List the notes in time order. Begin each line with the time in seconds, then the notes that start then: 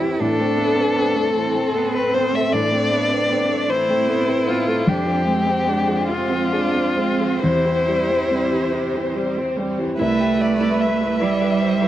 Already playing: E2 C4 E4 G4 C5
0.00 E3 G4
0.19 A2 E3 C4 D4 A4
0.39 A3 C4
0.57 B3 A4
0.76 C4 B4
0.95 B3 C4
1.16 A3 A4
1.36 E3 C4
1.55 A3 C4
1.75 B3 A4
1.94 C4 B4
2.13 B3 C4 C5
2.33 A3 A4 E5
2.52 A2 E3 D4 D5
2.71 A3 C4
2.90 B3 A4
3.09 C4 B4
3.29 B3 C4
3.48 A3 A4
3.68 E3 E4 C5
3.88 A3 C4
4.07 B3 A4
4.27 C4 B4
4.47 B3 C4 F4
4.67 A3 A4
4.86 F2 C3 G#3 C4 D4 G4 C5
5.06 F3 C4
5.26 G#3 C4
5.46 C4 C5
5.67 G#3 C4 D4
5.88 F3 G#4
6.08 C3 C4 F4
6.30 F3 C4
6.52 G#3 D4 G#4
6.74 C4 C5
6.96 G#3 C4
7.20 F3 G#4
7.42 E2 C3 E4 G4 C5
7.66 E3 C4
7.89 G3 G4
8.10 C4 C5
8.31 G3 C4
8.52 E3 G4
8.73 C3
8.94 E3 C4
9.15 G3 G4
9.37 C4 C5
9.57 G3 C4
9.79 E3 G4
9.99 C2 G3 A3 E4 B4 E5
10.20 G4
10.40 G4 D5 E5
10.60 E4 B4
10.80 E5
11.01 B4
11.20 G3 E4 D5
11.41 B4
11.60 C5
11.81 E4 B4